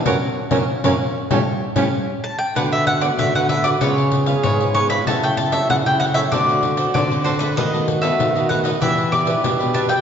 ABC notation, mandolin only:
X:1
M:4/4
L:1/16
Q:1/4=96
K:Amix
V:1 name="Mandolin"
z12 z2 a g | [K:D] f e f d e f e d c4 c2 c' b | a g a e f g f e d4 d2 =c B | ^d3 e3 f2 e2 =d4 a g |]